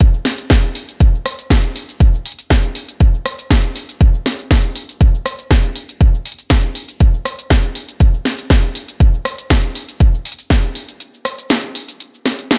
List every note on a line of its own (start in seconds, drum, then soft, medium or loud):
0.00 kick loud
0.00 closed hi-hat medium
0.00 shaker medium
0.00 shaker soft
0.14 shaker soft
0.25 snare medium
0.25 open hi-hat loud
0.25 shaker medium
0.32 closed hi-hat medium
0.38 closed hi-hat medium
0.38 shaker medium
0.38 shaker soft
0.50 kick loud
0.50 snare loud
0.50 closed hi-hat medium
0.50 shaker medium
0.50 shaker soft
0.64 shaker soft
0.75 open hi-hat loud
0.75 shaker medium
0.89 closed hi-hat medium
0.89 shaker medium
0.89 shaker soft
1.00 kick loud
1.00 closed hi-hat medium
1.00 shaker medium
1.00 shaker soft
1.14 shaker soft
1.26 cross-stick medium
1.26 open hi-hat loud
1.26 shaker medium
1.39 closed hi-hat medium
1.39 shaker medium
1.39 shaker soft
1.50 kick loud
1.50 snare loud
1.50 closed hi-hat medium
1.50 shaker medium
1.50 shaker soft
1.64 shaker soft
1.76 open hi-hat loud
1.76 shaker medium
1.89 closed hi-hat medium
1.89 shaker medium
1.89 shaker soft
2.00 kick loud
2.00 closed hi-hat medium
2.00 shaker medium
2.00 shaker soft
2.13 shaker soft
2.26 open hi-hat loud
2.26 shaker medium
2.32 closed hi-hat medium
2.39 closed hi-hat medium
2.39 shaker medium
2.39 shaker soft
2.50 kick loud
2.50 snare loud
2.50 closed hi-hat medium
2.50 shaker medium
2.50 shaker soft
2.64 shaker soft
2.75 open hi-hat loud
2.75 shaker medium
2.88 closed hi-hat medium
2.88 shaker medium
2.88 shaker soft
3.00 kick loud
3.00 closed hi-hat medium
3.00 shaker medium
3.00 shaker soft
3.14 shaker soft
3.26 cross-stick medium
3.26 open hi-hat loud
3.26 shaker medium
3.38 closed hi-hat medium
3.38 shaker medium
3.38 shaker soft
3.51 kick loud
3.51 snare loud
3.51 closed hi-hat medium
3.51 shaker medium
3.51 shaker soft
3.64 shaker soft
3.76 open hi-hat loud
3.76 shaker medium
3.89 closed hi-hat medium
3.89 shaker medium
3.89 shaker soft
4.01 kick loud
4.01 closed hi-hat medium
4.01 shaker medium
4.01 shaker soft
4.13 shaker soft
4.26 snare medium
4.26 open hi-hat loud
4.26 shaker medium
4.32 closed hi-hat medium
4.39 closed hi-hat medium
4.39 shaker medium
4.39 shaker soft
4.51 kick loud
4.51 snare loud
4.51 open hi-hat medium
4.51 shaker medium
4.51 shaker soft
4.64 shaker soft
4.76 open hi-hat loud
4.76 shaker medium
4.89 closed hi-hat medium
4.89 shaker medium
4.89 shaker soft
5.01 kick loud
5.01 closed hi-hat medium
5.01 shaker medium
5.01 shaker soft
5.14 shaker soft
5.26 cross-stick medium
5.26 open hi-hat loud
5.26 shaker medium
5.39 closed hi-hat medium
5.39 shaker medium
5.39 shaker soft
5.51 kick loud
5.51 snare loud
5.51 closed hi-hat medium
5.51 shaker medium
5.51 shaker soft
5.64 shaker soft
5.76 open hi-hat loud
5.76 shaker medium
5.88 closed hi-hat medium
5.88 shaker medium
5.90 shaker soft
6.01 kick loud
6.01 closed hi-hat medium
6.01 shaker medium
6.01 shaker soft
6.14 shaker soft
6.25 open hi-hat loud
6.25 shaker medium
6.32 closed hi-hat medium
6.38 closed hi-hat soft
6.38 shaker medium
6.38 shaker soft
6.50 kick loud
6.50 snare loud
6.50 closed hi-hat medium
6.50 shaker soft
6.50 shaker medium
6.64 shaker soft
6.75 open hi-hat loud
6.75 shaker medium
6.88 closed hi-hat medium
6.88 shaker medium
6.88 shaker soft
7.00 kick loud
7.00 closed hi-hat medium
7.00 shaker medium
7.00 shaker soft
7.14 shaker soft
7.25 cross-stick medium
7.25 open hi-hat loud
7.25 shaker medium
7.39 closed hi-hat medium
7.39 shaker medium
7.39 shaker soft
7.50 kick loud
7.50 snare loud
7.50 closed hi-hat medium
7.50 shaker medium
7.50 shaker soft
7.63 shaker soft
7.75 open hi-hat loud
7.75 shaker medium
7.88 closed hi-hat medium
7.88 shaker medium
7.88 shaker soft
8.00 kick loud
8.00 closed hi-hat medium
8.00 shaker medium
8.00 shaker soft
8.13 shaker soft
8.25 snare medium
8.25 open hi-hat loud
8.25 shaker medium
8.32 closed hi-hat medium
8.38 closed hi-hat medium
8.38 shaker medium
8.38 shaker soft
8.50 kick loud
8.50 snare loud
8.50 closed hi-hat medium
8.50 shaker medium
8.50 shaker soft
8.64 shaker soft
8.75 open hi-hat loud
8.75 shaker medium
8.88 closed hi-hat medium
8.88 shaker medium
8.88 shaker soft
9.00 kick loud
9.00 closed hi-hat medium
9.00 shaker medium
9.00 shaker soft
9.13 shaker soft
9.25 cross-stick medium
9.25 open hi-hat loud
9.25 shaker medium
9.38 closed hi-hat medium
9.38 shaker medium
9.38 shaker soft
9.50 kick loud
9.50 snare loud
9.50 closed hi-hat medium
9.50 shaker medium
9.50 shaker soft
9.64 shaker soft
9.75 open hi-hat loud
9.75 shaker medium
9.89 closed hi-hat medium
9.89 shaker medium
9.89 shaker soft
9.99 kick loud
9.99 closed hi-hat medium
9.99 shaker medium
10.12 shaker soft
10.14 shaker soft
10.25 open hi-hat loud
10.25 shaker medium
10.32 closed hi-hat medium
10.39 closed hi-hat medium
10.39 shaker soft
10.39 shaker medium
10.50 kick loud
10.50 snare loud
10.50 closed hi-hat medium
10.50 shaker soft
10.50 shaker medium
10.63 shaker soft
10.75 open hi-hat loud
10.75 shaker medium
10.89 closed hi-hat medium
10.89 shaker medium
10.89 shaker soft
11.00 closed hi-hat medium
11.00 shaker medium
11.00 shaker soft
11.14 shaker soft
11.25 cross-stick medium
11.25 open hi-hat loud
11.25 shaker medium
11.38 closed hi-hat medium
11.38 shaker medium
11.38 shaker soft
11.49 snare loud
11.49 closed hi-hat medium
11.49 shaker medium
11.49 shaker soft
11.64 shaker soft
11.75 open hi-hat loud
11.75 shaker medium
11.88 closed hi-hat medium
11.88 shaker soft
11.88 shaker medium
12.00 closed hi-hat medium
12.00 shaker medium
12.00 shaker soft
12.14 shaker soft
12.26 snare medium
12.26 open hi-hat loud
12.26 shaker medium
12.32 closed hi-hat medium
12.38 closed hi-hat medium
12.38 shaker medium
12.38 shaker soft
12.51 snare loud
12.51 open hi-hat medium
12.51 shaker medium
12.51 shaker soft